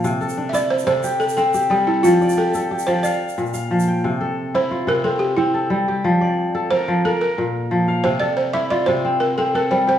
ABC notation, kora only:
X:1
M:12/8
L:1/8
Q:3/8=120
K:Cmix
V:1 name="Kora"
z A D3 A G3 G2 A- | A d G2 G d f3 f2 g- | g A3 F2 C3 A2 G- | G d3 B2 B3 z2 f- |
f A3 F2 C3 A2 G |]
V:2 name="Kora" clef=bass
C,2 z E2 C,2 z C2 G,2 | F,2 z A2 F, z2 B,,2 F,2 | C,2 z E2 C,2 z C2 G,2 | F,2 z A2 F, z2 B,,2 F,2 |
C,2 z E2 C,2 z C2 G,2 |]